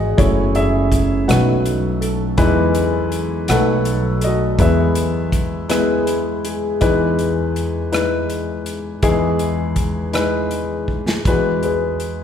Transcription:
Already playing: upright piano G#1 G#2 G#3 B3 D#4 F#4 B4 D#5 F#5, upright bass G#1, harp B3 G#4
0.17 upright piano F#1 F#2 A3 E4 F#4 C#5, upright bass F#1, harp C#4, kick, closed hi-hat
0.54 harp E4, upright piano G#4 E5, closed hi-hat
0.92 kick, closed hi-hat
1.28 upright piano B1 B2 A3 D#4 F#4 A4 B4 F#5, upright bass B1, harp F#3, cross-stick, closed hi-hat
1.66 closed hi-hat
2.01 harp A4, closed hi-hat
2.38 upright piano E2 E3 G#3 D#4 E4 B4, upright bass E2, harp B3, kick, closed hi-hat
2.75 closed hi-hat
3.12 closed hi-hat
3.48 upright bass B1, upright piano B1 B2 A3 D#4 F#4 A4 B4 F#5, harp F#3, cross-stick, closed hi-hat
3.85 closed hi-hat
4.21 harp A4, upright piano D#5, closed hi-hat
4.26 upright piano F#4
4.59 upright piano E2 E3 G#3 B3 E4 B4 E5, upright bass E2, harp B3, kick, closed hi-hat
4.63 upright piano G#4
4.95 closed hi-hat
5.32 kick, closed hi-hat
5.69 upright piano G#3 B3 E4 B4, harp B3 G#4, cross-stick, closed hi-hat
6.07 closed hi-hat
6.45 harp G#4, closed hi-hat
6.81 upright piano E2 E3 G#3 D#4 E4 B4, upright bass E2, kick, closed hi-hat
7.19 closed hi-hat
7.56 closed hi-hat
7.92 upright piano G#3 D#4 E4 B4, cross-stick, closed hi-hat
8.30 closed hi-hat
8.66 closed hi-hat
9.03 upright piano E2 E3 G#3 D#4 E4 G#4, upright bass E2, kick, closed hi-hat
9.39 closed hi-hat
9.76 kick, closed hi-hat
10.13 upright piano G#3 D#4 E4 B4, cross-stick, closed hi-hat
10.51 closed hi-hat
10.88 kick
11.08 snare
11.25 upright bass E2, upright piano E2 E3 G#3 E4 F#4 B4, kick, closed hi-hat
11.63 upright piano G#4 B4, closed hi-hat
12.00 closed hi-hat

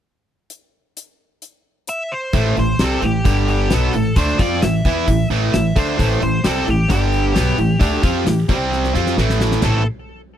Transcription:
0.50 closed hi-hat
0.97 closed hi-hat
1.42 closed hi-hat
1.87 lead electric guitar E5, closed hi-hat
2.12 lead electric guitar C5
2.33 upright bass A1, distorted electric guitar A2 E3 A3, kick, open hi-hat
2.57 upright bass A1, distorted electric guitar A2 E3, lead electric guitar C5, open hi-hat
2.79 upright bass C2, distorted electric guitar C3 G3 C4, snare, open hi-hat
2.84 lead electric guitar A4
3.02 upright bass A1, distorted electric guitar A2 E3, lead electric guitar G4, snare, open hi-hat
3.24 upright bass G1, distorted electric guitar G2 D3 G3, kick, open hi-hat
3.48 lead electric guitar G4, open hi-hat
3.70 upright bass B1, distorted electric guitar B2 F#3 B3, lead electric guitar A4, snare, open hi-hat
3.93 upright bass A1, distorted electric guitar A2 E3, open hi-hat
4.16 upright bass D2, distorted electric guitar D3 A3 D4, lead electric guitar C5, kick, open hi-hat
4.38 upright bass F2, distorted electric guitar F3 C4 F4, lead electric guitar D5, kick, open hi-hat
4.62 upright bass A1, distorted electric guitar A2 E3, lead electric guitar E5, snare, open hi-hat
4.85 upright bass E2, distorted electric guitar E3 B3 E4, kick, open hi-hat
5.07 upright bass A1, distorted electric guitar A2 E3, kick, open hi-hat
5.30 upright bass A1, distorted electric guitar A2 E3 A3, open hi-hat
5.53 upright bass A1, distorted electric guitar A2 E3, lead electric guitar E5, snare, open hi-hat
5.76 upright bass D2, distorted electric guitar D3 A3 D4, lead electric guitar C5, kick, open hi-hat
5.99 upright bass A1, distorted electric guitar A2 E3 A3, kick, open hi-hat
6.21 upright bass A1, distorted electric guitar A2 E3, lead electric guitar C5, open hi-hat
6.44 upright bass C2, distorted electric guitar C3 G3 C4, lead electric guitar A4, snare, open hi-hat
6.67 upright bass A1, distorted electric guitar A2 E3, lead electric guitar G4, open hi-hat
6.89 upright bass G1, distorted electric guitar G2 D3 G3, lead electric guitar G4, kick, open hi-hat
7.13 open hi-hat
7.34 upright bass B1, distorted electric guitar B2 F#3 B3, snare, open hi-hat
7.57 upright bass A1, distorted electric guitar A2 E3, open hi-hat
7.79 upright bass D2, distorted electric guitar D3 A3 D4, kick, open hi-hat
8.03 upright bass F2, distorted electric guitar F3 C4 F4, kick, open hi-hat
8.26 upright bass A1, distorted electric guitar A2 E3, snare, open hi-hat
8.49 upright bass C2, distorted electric guitar C3 G3 C4, kick, open hi-hat
8.72 snare
8.84 snare
8.94 upright bass F2, distorted electric guitar F3 C4 F4, snare
9.06 snare
9.17 upright bass A1, distorted electric guitar A2 E3 A3, snare
9.30 snare
9.41 snare
9.52 snare
9.62 upright bass A1, distorted electric guitar A2 E3 A3 C4 E4, lead electric guitar A4, snare, floor tom, china

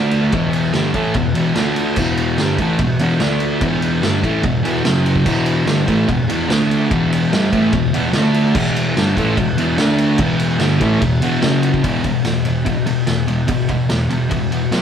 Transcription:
Already playing: distorted electric guitar D3 A3 D4
0.11 ride
0.31 distorted electric guitar E2 B2 E3, kick, ride
0.53 ride
0.73 distorted electric guitar G2 D3 G3, snare, ride
0.93 distorted electric guitar A2 E3 A3, kick, ride
1.14 distorted electric guitar E2 B2, kick, ride
1.34 distorted electric guitar E2 B2 E3, ride
1.55 distorted electric guitar D3 A3 D4, snare, ride
1.76 ride
1.96 distorted electric guitar E2 B2 E3, kick, crash
2.17 ride
2.38 distorted electric guitar G2 D3 G3, snare, ride
2.58 distorted electric guitar A2 E3 A3, kick, ride
2.79 distorted electric guitar E2 B2, kick, ride
2.99 distorted electric guitar E2 B2 E3, ride
3.20 distorted electric guitar D3 A3 D4, snare, ride
3.40 ride
3.60 distorted electric guitar E2 B2 E3, kick, ride
3.82 ride
4.02 distorted electric guitar G2 D3 G3, snare, ride
4.23 distorted electric guitar A2 E3 A3, kick, ride
4.43 distorted electric guitar E2 B2, kick, ride
4.63 distorted electric guitar E2 B2 E3, ride
4.84 distorted electric guitar F#2 C#3 F#3, snare, ride
5.06 ride
5.16 kick
5.25 distorted electric guitar E2 B2 E3, kick, crash
5.46 ride
5.65 distorted electric guitar G2 D3 G3, snare, ride
5.86 distorted electric guitar A2 E3 A3, kick, ride
6.08 distorted electric guitar E2 B2, kick, ride
6.28 distorted electric guitar E2 B2 E3, ride
6.49 distorted electric guitar D3 A3 D4, snare, ride
6.71 ride
6.89 distorted electric guitar E2 B2 E3, kick, ride
7.13 ride
7.31 distorted electric guitar G2 D3 G3, snare, ride
7.51 distorted electric guitar A2 E3 A3, kick, ride
7.73 distorted electric guitar E2 B2, kick, ride
7.93 distorted electric guitar E2 B2 E3, ride
8.13 distorted electric guitar D3 A3 D4, snare, ride
8.34 ride
8.54 distorted electric guitar E2 B2 E3, kick, crash
8.76 ride
8.96 distorted electric guitar G2 D3 G3, snare, ride
9.17 distorted electric guitar A2 E3 A3, kick, ride
9.37 distorted electric guitar E2 B2, kick, ride
9.58 distorted electric guitar E2 B2 E3, ride
9.78 distorted electric guitar D3 A3 D4, snare, ride
9.98 ride
10.18 distorted electric guitar E2 B2 E3, kick, ride
10.40 ride
10.59 distorted electric guitar G2 D3 G3, snare, ride
10.80 distorted electric guitar A2 E3 A3, kick, ride
11.01 distorted electric guitar E2 B2, kick, ride
11.21 distorted electric guitar E2 B2 E3, ride
11.42 distorted electric guitar F#2 C#3 F#3, snare, ride
11.63 ride
11.74 kick
11.83 distorted electric guitar E2 B2 E3, kick, ride
12.04 distorted electric guitar E2 B2, kick, ride
12.25 distorted electric guitar E2 B2, snare, ride
12.45 distorted electric guitar E2 B2, ride
12.65 distorted electric guitar E2 B2, kick, ride
12.87 distorted electric guitar E2 B2, ride
13.07 distorted electric guitar E2 B2, snare, ride
13.27 distorted electric guitar E2 B2, ride
13.47 distorted electric guitar E2 B2, kick, ride
13.68 distorted electric guitar E2 B2, kick, ride
13.89 distorted electric guitar E2 B2, snare, ride
14.09 distorted electric guitar E2 B2, ride
14.29 distorted electric guitar E2 B2, kick, ride
14.51 distorted electric guitar E2 B2, ride
14.72 distorted electric guitar B2 F#3 B3, snare, ride

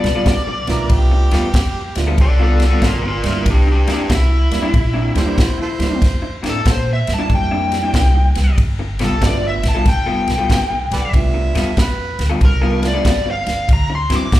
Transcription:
Already playing: lead electric guitar D5
0.04 upright bass B1, snare, ride
0.15 clean electric guitar G3 B3 F4 A4
0.26 upright bass B1, kick, snare, ride
0.47 muted clean electric guitar stroke
0.67 upright bass B1, grand piano A3 B3 D4 F4, harmonica A#4, snare, ride
0.90 upright bass C2, harmonica G4, kick, ride
1.11 muted clean electric guitar stroke
1.31 upright bass E2, clean electric guitar G3 B3 F4 A4, snare, ride
1.54 upright bass F2, muted clean electric guitar stroke, kick, snare, ride
1.95 upright bass D2, grand piano A3 B3 D4 F4, snare, ride
2.07 clean electric guitar G3 B3 F4 A4
2.18 upright bass C2, lead electric guitar A4 D5, muted clean electric guitar stroke, kick, ride
2.39 clean electric guitar G3 B3 F4 A4, lead electric guitar A4
2.44 lead electric guitar D5
2.60 snare, ride
2.65 lead electric guitar A4 D5
2.71 clean electric guitar G3 B3 F4 A4
2.81 upright bass G1, kick, snare, ride
2.86 lead electric guitar F4 A#4
3.03 muted clean electric guitar stroke
3.07 lead electric guitar F4 A#4
3.23 upright bass G1, grand piano G3 A#3 D4 E4, snare, ride
3.28 lead electric guitar F4 A#4
3.45 upright bass C2, kick, ride
3.50 lead electric guitar D4 G4
3.67 muted clean electric guitar stroke
3.72 lead electric guitar D4 G4
3.87 upright bass F2, clean electric guitar C3 A#3 D4 E4, snare, ride
3.92 lead electric guitar D4 G4
4.09 upright bass C2, muted clean electric guitar stroke, kick, snare, ride
4.14 lead electric guitar E4
4.51 upright bass E2, grand piano G3 A#3 D4 E4, snare, ride
4.62 clean electric guitar C3 A#3 D4 E4
4.73 upright bass A#1, muted clean electric guitar stroke, kick, ride
4.93 clean electric guitar C3 A#3 D4 E4
5.15 upright bass E2, grand piano G3 A#3 D4 G4, harmonica F4 A4 C5, snare, ride
5.25 clean electric guitar C3 A#3 D4 E4
5.38 upright bass E2, kick, snare, ride
5.58 harmonica F4 A4 C5, muted clean electric guitar stroke
5.79 upright bass E2, grand piano G3 A#3 D4 E4, snare, ride
6.02 upright bass F2, kick, snare, ride
6.22 muted clean electric guitar stroke
6.43 upright bass A2, clean electric guitar C3 A#3 D4 E4, snare, ride
6.49 lead electric guitar A4
6.66 upright bass A#2, muted clean electric guitar stroke, kick, snare, ride
6.71 lead electric guitar C5
6.93 lead electric guitar E5
7.07 upright bass G2, snare, ride
7.14 lead electric guitar A5
7.19 clean electric guitar C3 A#3 D4 E4
7.30 upright bass F2, grand piano G3 A#3 D4 E4, muted clean electric guitar stroke, kick, ride
7.35 lead electric guitar G5
7.51 clean electric guitar C3 A#3 D4 E4
7.72 snare, ride
7.83 clean electric guitar C3 A#3 D4 E4
7.94 upright bass C2, kick, snare, ride
8.15 muted clean electric guitar stroke
8.35 upright bass C2, snare, ride
8.58 upright bass G1, kick, ride
8.79 muted clean electric guitar stroke
8.99 upright bass C2, clean electric guitar G3 B3 F4 A4, snare, ride
9.04 lead electric guitar A4
9.21 upright bass G1, grand piano A3 B3 D4 F4, muted clean electric guitar stroke, kick, snare, ride
9.26 lead electric guitar D5
9.48 lead electric guitar E5
9.63 upright bass B1, snare, ride
9.68 lead electric guitar A5
9.75 clean electric guitar G3 B3 F4 A4
9.86 upright bass F1, lead electric guitar G5, muted clean electric guitar stroke, kick, snare, ride
10.06 clean electric guitar G3 B3 F4 A4
10.28 upright bass B1, snare, ride
10.38 clean electric guitar G3 B3 F4 A4
10.49 upright bass B1, kick, snare, ride
10.70 muted clean electric guitar stroke
10.91 upright bass B1, harmonica A4 B4 D5, snare, ride
11.13 upright bass C2, grand piano A3 B3 D4 F4, harmonica E5, kick, ride
11.34 muted clean electric guitar stroke
11.55 upright bass E2, clean electric guitar G3 B3 F4 A4, snare, ride
11.77 upright bass F2, harmonica B4, muted clean electric guitar stroke, kick, snare, ride
12.19 upright bass D2, snare, ride
12.29 clean electric guitar G3 B3 F4 A4
12.41 upright bass C2, muted clean electric guitar stroke, kick, ride
12.45 lead electric guitar A#4
12.62 clean electric guitar G3 B3 F4 A4
12.82 grand piano A3 B3 D4 F4, snare, ride
12.88 lead electric guitar D5
12.94 clean electric guitar G3 B3 F4 A4
13.05 upright bass G1, kick, snare, ride
13.26 muted clean electric guitar stroke
13.31 lead electric guitar F5
13.47 upright bass G1, snare, ride
13.69 upright bass D2, kick, ride
13.73 lead electric guitar A#5
13.90 muted clean electric guitar stroke
13.95 lead electric guitar C6
14.09 upright bass G2, clean electric guitar D3 F#3 C4 E4, snare, ride
14.16 lead electric guitar D6
14.32 upright bass D2, muted clean electric guitar stroke, kick, snare, ride

